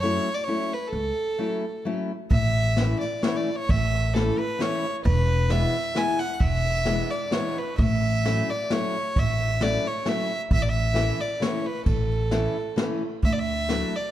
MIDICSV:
0, 0, Header, 1, 5, 480
1, 0, Start_track
1, 0, Key_signature, 3, "major"
1, 0, Tempo, 456621
1, 988, Time_signature, 3, 2, 24, 8
1, 9158, Tempo, 452148
1, 14890, End_track
2, 0, Start_track
2, 0, Title_t, "Violin"
2, 0, Program_c, 0, 40
2, 9, Note_on_c, 0, 73, 105
2, 358, Note_on_c, 0, 74, 75
2, 374, Note_off_c, 0, 73, 0
2, 467, Note_on_c, 0, 73, 87
2, 482, Note_off_c, 0, 74, 0
2, 772, Note_on_c, 0, 71, 75
2, 788, Note_off_c, 0, 73, 0
2, 920, Note_on_c, 0, 69, 88
2, 936, Note_off_c, 0, 71, 0
2, 1917, Note_off_c, 0, 69, 0
2, 2432, Note_on_c, 0, 76, 105
2, 3138, Note_off_c, 0, 76, 0
2, 3158, Note_on_c, 0, 74, 69
2, 3390, Note_on_c, 0, 73, 84
2, 3406, Note_off_c, 0, 74, 0
2, 3537, Note_on_c, 0, 74, 68
2, 3553, Note_off_c, 0, 73, 0
2, 3740, Note_on_c, 0, 73, 88
2, 3756, Note_off_c, 0, 74, 0
2, 3889, Note_on_c, 0, 76, 101
2, 3905, Note_off_c, 0, 73, 0
2, 4348, Note_on_c, 0, 69, 84
2, 4364, Note_off_c, 0, 76, 0
2, 4612, Note_on_c, 0, 71, 90
2, 4628, Note_off_c, 0, 69, 0
2, 4850, Note_on_c, 0, 73, 95
2, 4865, Note_off_c, 0, 71, 0
2, 5208, Note_off_c, 0, 73, 0
2, 5312, Note_on_c, 0, 71, 100
2, 5785, Note_on_c, 0, 76, 100
2, 5801, Note_off_c, 0, 71, 0
2, 6269, Note_on_c, 0, 80, 97
2, 6285, Note_off_c, 0, 76, 0
2, 6509, Note_on_c, 0, 78, 90
2, 6525, Note_off_c, 0, 80, 0
2, 6656, Note_off_c, 0, 78, 0
2, 6656, Note_on_c, 0, 78, 67
2, 6726, Note_on_c, 0, 76, 110
2, 6741, Note_off_c, 0, 78, 0
2, 7468, Note_on_c, 0, 74, 85
2, 7484, Note_off_c, 0, 76, 0
2, 7704, Note_on_c, 0, 73, 84
2, 7719, Note_off_c, 0, 74, 0
2, 7972, Note_on_c, 0, 71, 74
2, 7988, Note_off_c, 0, 73, 0
2, 8182, Note_off_c, 0, 71, 0
2, 8189, Note_on_c, 0, 76, 104
2, 8937, Note_on_c, 0, 74, 84
2, 8952, Note_off_c, 0, 76, 0
2, 9168, Note_on_c, 0, 73, 90
2, 9184, Note_off_c, 0, 74, 0
2, 9664, Note_on_c, 0, 76, 93
2, 9680, Note_off_c, 0, 73, 0
2, 10125, Note_on_c, 0, 74, 93
2, 10141, Note_off_c, 0, 76, 0
2, 10386, Note_on_c, 0, 73, 78
2, 10402, Note_off_c, 0, 74, 0
2, 10615, Note_on_c, 0, 76, 83
2, 10631, Note_off_c, 0, 73, 0
2, 10967, Note_off_c, 0, 76, 0
2, 11085, Note_on_c, 0, 76, 114
2, 11186, Note_on_c, 0, 74, 78
2, 11202, Note_off_c, 0, 76, 0
2, 11257, Note_on_c, 0, 76, 101
2, 11273, Note_off_c, 0, 74, 0
2, 11807, Note_on_c, 0, 74, 81
2, 11822, Note_off_c, 0, 76, 0
2, 12039, Note_on_c, 0, 73, 69
2, 12055, Note_off_c, 0, 74, 0
2, 12290, Note_on_c, 0, 71, 77
2, 12306, Note_off_c, 0, 73, 0
2, 12506, Note_off_c, 0, 71, 0
2, 12514, Note_on_c, 0, 69, 75
2, 13691, Note_off_c, 0, 69, 0
2, 13973, Note_on_c, 0, 76, 92
2, 14057, Note_on_c, 0, 74, 81
2, 14073, Note_off_c, 0, 76, 0
2, 14126, Note_on_c, 0, 76, 101
2, 14142, Note_off_c, 0, 74, 0
2, 14722, Note_on_c, 0, 74, 83
2, 14738, Note_off_c, 0, 76, 0
2, 14890, Note_off_c, 0, 74, 0
2, 14890, End_track
3, 0, Start_track
3, 0, Title_t, "Steel-string acoustic guitar"
3, 0, Program_c, 1, 25
3, 28, Note_on_c, 1, 54, 45
3, 35, Note_on_c, 1, 57, 52
3, 38, Note_on_c, 1, 61, 47
3, 42, Note_on_c, 1, 64, 57
3, 286, Note_off_c, 1, 54, 0
3, 289, Note_off_c, 1, 61, 0
3, 290, Note_off_c, 1, 57, 0
3, 293, Note_off_c, 1, 64, 0
3, 499, Note_on_c, 1, 54, 40
3, 506, Note_on_c, 1, 61, 41
3, 507, Note_on_c, 1, 57, 38
3, 511, Note_on_c, 1, 64, 53
3, 761, Note_off_c, 1, 54, 0
3, 763, Note_off_c, 1, 57, 0
3, 764, Note_off_c, 1, 61, 0
3, 766, Note_off_c, 1, 64, 0
3, 1456, Note_on_c, 1, 54, 48
3, 1458, Note_on_c, 1, 57, 43
3, 1464, Note_on_c, 1, 61, 46
3, 1471, Note_on_c, 1, 64, 51
3, 1720, Note_off_c, 1, 54, 0
3, 1722, Note_off_c, 1, 64, 0
3, 1723, Note_off_c, 1, 57, 0
3, 1723, Note_off_c, 1, 61, 0
3, 1946, Note_on_c, 1, 54, 46
3, 1953, Note_on_c, 1, 57, 42
3, 1959, Note_on_c, 1, 64, 54
3, 1960, Note_on_c, 1, 61, 45
3, 2212, Note_off_c, 1, 54, 0
3, 2214, Note_off_c, 1, 57, 0
3, 2214, Note_off_c, 1, 61, 0
3, 2218, Note_off_c, 1, 64, 0
3, 2917, Note_on_c, 1, 52, 54
3, 2926, Note_on_c, 1, 61, 53
3, 2927, Note_on_c, 1, 57, 49
3, 2931, Note_on_c, 1, 64, 63
3, 3181, Note_off_c, 1, 52, 0
3, 3183, Note_off_c, 1, 57, 0
3, 3185, Note_off_c, 1, 61, 0
3, 3187, Note_off_c, 1, 64, 0
3, 3398, Note_on_c, 1, 52, 55
3, 3401, Note_on_c, 1, 57, 44
3, 3412, Note_on_c, 1, 61, 37
3, 3416, Note_on_c, 1, 64, 51
3, 3661, Note_off_c, 1, 52, 0
3, 3665, Note_off_c, 1, 57, 0
3, 3666, Note_off_c, 1, 61, 0
3, 3670, Note_off_c, 1, 64, 0
3, 4358, Note_on_c, 1, 52, 53
3, 4362, Note_on_c, 1, 57, 42
3, 4364, Note_on_c, 1, 61, 51
3, 4372, Note_on_c, 1, 64, 65
3, 4617, Note_off_c, 1, 57, 0
3, 4619, Note_off_c, 1, 52, 0
3, 4621, Note_off_c, 1, 61, 0
3, 4624, Note_off_c, 1, 64, 0
3, 4821, Note_on_c, 1, 52, 45
3, 4827, Note_on_c, 1, 57, 43
3, 4836, Note_on_c, 1, 61, 39
3, 4836, Note_on_c, 1, 64, 64
3, 5085, Note_off_c, 1, 52, 0
3, 5090, Note_off_c, 1, 57, 0
3, 5091, Note_off_c, 1, 61, 0
3, 5092, Note_off_c, 1, 64, 0
3, 5778, Note_on_c, 1, 52, 59
3, 5785, Note_on_c, 1, 56, 43
3, 5785, Note_on_c, 1, 59, 51
3, 5792, Note_on_c, 1, 64, 54
3, 6036, Note_off_c, 1, 52, 0
3, 6036, Note_off_c, 1, 56, 0
3, 6039, Note_off_c, 1, 59, 0
3, 6040, Note_off_c, 1, 64, 0
3, 6249, Note_on_c, 1, 52, 40
3, 6255, Note_on_c, 1, 59, 45
3, 6257, Note_on_c, 1, 56, 34
3, 6261, Note_on_c, 1, 64, 55
3, 6509, Note_off_c, 1, 52, 0
3, 6511, Note_off_c, 1, 56, 0
3, 6512, Note_off_c, 1, 59, 0
3, 6515, Note_off_c, 1, 64, 0
3, 7207, Note_on_c, 1, 52, 43
3, 7211, Note_on_c, 1, 56, 49
3, 7219, Note_on_c, 1, 59, 41
3, 7219, Note_on_c, 1, 64, 61
3, 7469, Note_off_c, 1, 52, 0
3, 7472, Note_off_c, 1, 56, 0
3, 7473, Note_off_c, 1, 59, 0
3, 7476, Note_off_c, 1, 64, 0
3, 7683, Note_on_c, 1, 52, 50
3, 7692, Note_on_c, 1, 59, 34
3, 7694, Note_on_c, 1, 56, 37
3, 7698, Note_on_c, 1, 64, 48
3, 7954, Note_off_c, 1, 52, 0
3, 7955, Note_off_c, 1, 56, 0
3, 7958, Note_off_c, 1, 59, 0
3, 7961, Note_off_c, 1, 64, 0
3, 8671, Note_on_c, 1, 54, 55
3, 8681, Note_on_c, 1, 61, 54
3, 8684, Note_on_c, 1, 57, 41
3, 8685, Note_on_c, 1, 64, 60
3, 8934, Note_off_c, 1, 54, 0
3, 8936, Note_off_c, 1, 57, 0
3, 8938, Note_off_c, 1, 61, 0
3, 8940, Note_off_c, 1, 64, 0
3, 9152, Note_on_c, 1, 54, 48
3, 9162, Note_on_c, 1, 57, 43
3, 9163, Note_on_c, 1, 64, 57
3, 9169, Note_on_c, 1, 61, 35
3, 9414, Note_off_c, 1, 54, 0
3, 9415, Note_off_c, 1, 57, 0
3, 9415, Note_off_c, 1, 61, 0
3, 9417, Note_off_c, 1, 64, 0
3, 10115, Note_on_c, 1, 54, 54
3, 10121, Note_on_c, 1, 57, 49
3, 10131, Note_on_c, 1, 64, 64
3, 10132, Note_on_c, 1, 61, 40
3, 10372, Note_off_c, 1, 54, 0
3, 10373, Note_off_c, 1, 57, 0
3, 10374, Note_off_c, 1, 61, 0
3, 10379, Note_off_c, 1, 64, 0
3, 10581, Note_on_c, 1, 54, 50
3, 10585, Note_on_c, 1, 57, 45
3, 10592, Note_on_c, 1, 61, 42
3, 10594, Note_on_c, 1, 64, 53
3, 10840, Note_off_c, 1, 54, 0
3, 10843, Note_off_c, 1, 57, 0
3, 10844, Note_off_c, 1, 61, 0
3, 10847, Note_off_c, 1, 64, 0
3, 11522, Note_on_c, 1, 52, 59
3, 11528, Note_on_c, 1, 57, 53
3, 11538, Note_on_c, 1, 61, 47
3, 11541, Note_on_c, 1, 64, 68
3, 11788, Note_off_c, 1, 57, 0
3, 11789, Note_off_c, 1, 52, 0
3, 11790, Note_off_c, 1, 61, 0
3, 11796, Note_off_c, 1, 64, 0
3, 12011, Note_on_c, 1, 52, 44
3, 12020, Note_on_c, 1, 61, 38
3, 12023, Note_on_c, 1, 57, 33
3, 12027, Note_on_c, 1, 64, 49
3, 12274, Note_off_c, 1, 52, 0
3, 12275, Note_off_c, 1, 57, 0
3, 12277, Note_off_c, 1, 61, 0
3, 12281, Note_off_c, 1, 64, 0
3, 12978, Note_on_c, 1, 52, 57
3, 12984, Note_on_c, 1, 57, 44
3, 12993, Note_on_c, 1, 61, 39
3, 12994, Note_on_c, 1, 64, 59
3, 13238, Note_off_c, 1, 52, 0
3, 13242, Note_off_c, 1, 57, 0
3, 13242, Note_off_c, 1, 61, 0
3, 13246, Note_off_c, 1, 64, 0
3, 13456, Note_on_c, 1, 52, 52
3, 13465, Note_on_c, 1, 57, 42
3, 13467, Note_on_c, 1, 61, 40
3, 13473, Note_on_c, 1, 64, 42
3, 13723, Note_off_c, 1, 52, 0
3, 13725, Note_off_c, 1, 57, 0
3, 13728, Note_off_c, 1, 61, 0
3, 13728, Note_off_c, 1, 64, 0
3, 14440, Note_on_c, 1, 54, 53
3, 14445, Note_on_c, 1, 57, 40
3, 14451, Note_on_c, 1, 62, 57
3, 14458, Note_on_c, 1, 64, 50
3, 14696, Note_off_c, 1, 54, 0
3, 14699, Note_off_c, 1, 57, 0
3, 14703, Note_off_c, 1, 62, 0
3, 14704, Note_off_c, 1, 64, 0
3, 14890, End_track
4, 0, Start_track
4, 0, Title_t, "Upright bass"
4, 0, Program_c, 2, 32
4, 0, Note_on_c, 2, 42, 89
4, 178, Note_off_c, 2, 42, 0
4, 974, Note_on_c, 2, 37, 82
4, 1145, Note_off_c, 2, 37, 0
4, 2424, Note_on_c, 2, 33, 99
4, 3059, Note_off_c, 2, 33, 0
4, 3882, Note_on_c, 2, 33, 96
4, 4504, Note_off_c, 2, 33, 0
4, 5310, Note_on_c, 2, 28, 115
4, 5925, Note_off_c, 2, 28, 0
4, 6731, Note_on_c, 2, 28, 88
4, 7359, Note_off_c, 2, 28, 0
4, 8182, Note_on_c, 2, 33, 101
4, 8814, Note_off_c, 2, 33, 0
4, 9639, Note_on_c, 2, 33, 85
4, 10259, Note_off_c, 2, 33, 0
4, 11065, Note_on_c, 2, 33, 108
4, 11685, Note_off_c, 2, 33, 0
4, 12502, Note_on_c, 2, 33, 98
4, 13129, Note_off_c, 2, 33, 0
4, 13952, Note_on_c, 2, 38, 86
4, 14579, Note_off_c, 2, 38, 0
4, 14890, End_track
5, 0, Start_track
5, 0, Title_t, "Drums"
5, 2420, Note_on_c, 9, 51, 51
5, 2426, Note_on_c, 9, 36, 91
5, 2525, Note_off_c, 9, 51, 0
5, 2531, Note_off_c, 9, 36, 0
5, 2908, Note_on_c, 9, 38, 52
5, 2908, Note_on_c, 9, 51, 42
5, 3013, Note_off_c, 9, 38, 0
5, 3013, Note_off_c, 9, 51, 0
5, 3394, Note_on_c, 9, 38, 60
5, 3394, Note_on_c, 9, 51, 47
5, 3499, Note_off_c, 9, 38, 0
5, 3499, Note_off_c, 9, 51, 0
5, 3876, Note_on_c, 9, 51, 58
5, 3881, Note_on_c, 9, 36, 85
5, 3981, Note_off_c, 9, 51, 0
5, 3986, Note_off_c, 9, 36, 0
5, 4136, Note_on_c, 9, 51, 36
5, 4241, Note_off_c, 9, 51, 0
5, 4368, Note_on_c, 9, 38, 65
5, 4368, Note_on_c, 9, 51, 35
5, 4474, Note_off_c, 9, 38, 0
5, 4474, Note_off_c, 9, 51, 0
5, 4839, Note_on_c, 9, 38, 57
5, 4839, Note_on_c, 9, 51, 45
5, 4944, Note_off_c, 9, 38, 0
5, 4944, Note_off_c, 9, 51, 0
5, 5309, Note_on_c, 9, 51, 52
5, 5313, Note_on_c, 9, 36, 75
5, 5414, Note_off_c, 9, 51, 0
5, 5418, Note_off_c, 9, 36, 0
5, 5783, Note_on_c, 9, 38, 50
5, 5783, Note_on_c, 9, 51, 44
5, 5888, Note_off_c, 9, 38, 0
5, 5888, Note_off_c, 9, 51, 0
5, 6262, Note_on_c, 9, 38, 52
5, 6262, Note_on_c, 9, 51, 43
5, 6367, Note_off_c, 9, 38, 0
5, 6367, Note_off_c, 9, 51, 0
5, 6733, Note_on_c, 9, 36, 83
5, 6733, Note_on_c, 9, 51, 48
5, 6838, Note_off_c, 9, 36, 0
5, 6838, Note_off_c, 9, 51, 0
5, 6984, Note_on_c, 9, 51, 39
5, 7089, Note_off_c, 9, 51, 0
5, 7205, Note_on_c, 9, 38, 50
5, 7205, Note_on_c, 9, 51, 44
5, 7310, Note_off_c, 9, 38, 0
5, 7310, Note_off_c, 9, 51, 0
5, 7694, Note_on_c, 9, 38, 58
5, 7694, Note_on_c, 9, 51, 49
5, 7799, Note_off_c, 9, 38, 0
5, 7799, Note_off_c, 9, 51, 0
5, 8177, Note_on_c, 9, 51, 45
5, 8184, Note_on_c, 9, 36, 83
5, 8283, Note_off_c, 9, 51, 0
5, 8289, Note_off_c, 9, 36, 0
5, 8674, Note_on_c, 9, 38, 58
5, 8674, Note_on_c, 9, 51, 48
5, 8779, Note_off_c, 9, 38, 0
5, 8779, Note_off_c, 9, 51, 0
5, 9150, Note_on_c, 9, 38, 62
5, 9150, Note_on_c, 9, 51, 39
5, 9256, Note_off_c, 9, 38, 0
5, 9256, Note_off_c, 9, 51, 0
5, 9634, Note_on_c, 9, 51, 47
5, 9636, Note_on_c, 9, 36, 81
5, 9740, Note_off_c, 9, 51, 0
5, 9742, Note_off_c, 9, 36, 0
5, 9890, Note_on_c, 9, 51, 32
5, 9996, Note_off_c, 9, 51, 0
5, 10108, Note_on_c, 9, 38, 59
5, 10108, Note_on_c, 9, 51, 39
5, 10214, Note_off_c, 9, 38, 0
5, 10214, Note_off_c, 9, 51, 0
5, 10588, Note_on_c, 9, 38, 59
5, 10588, Note_on_c, 9, 51, 45
5, 10694, Note_off_c, 9, 38, 0
5, 10694, Note_off_c, 9, 51, 0
5, 11062, Note_on_c, 9, 51, 46
5, 11065, Note_on_c, 9, 36, 86
5, 11168, Note_off_c, 9, 51, 0
5, 11171, Note_off_c, 9, 36, 0
5, 11543, Note_on_c, 9, 38, 66
5, 11543, Note_on_c, 9, 51, 45
5, 11649, Note_off_c, 9, 38, 0
5, 11649, Note_off_c, 9, 51, 0
5, 12034, Note_on_c, 9, 38, 70
5, 12034, Note_on_c, 9, 51, 53
5, 12140, Note_off_c, 9, 38, 0
5, 12140, Note_off_c, 9, 51, 0
5, 12500, Note_on_c, 9, 51, 55
5, 12503, Note_on_c, 9, 36, 79
5, 12606, Note_off_c, 9, 51, 0
5, 12609, Note_off_c, 9, 36, 0
5, 12768, Note_on_c, 9, 51, 31
5, 12874, Note_off_c, 9, 51, 0
5, 12981, Note_on_c, 9, 38, 55
5, 12981, Note_on_c, 9, 51, 36
5, 13087, Note_off_c, 9, 38, 0
5, 13087, Note_off_c, 9, 51, 0
5, 13471, Note_on_c, 9, 38, 59
5, 13471, Note_on_c, 9, 51, 46
5, 13577, Note_off_c, 9, 38, 0
5, 13577, Note_off_c, 9, 51, 0
5, 13945, Note_on_c, 9, 51, 46
5, 13954, Note_on_c, 9, 36, 73
5, 14052, Note_off_c, 9, 51, 0
5, 14060, Note_off_c, 9, 36, 0
5, 14442, Note_on_c, 9, 38, 61
5, 14442, Note_on_c, 9, 51, 36
5, 14548, Note_off_c, 9, 38, 0
5, 14548, Note_off_c, 9, 51, 0
5, 14890, End_track
0, 0, End_of_file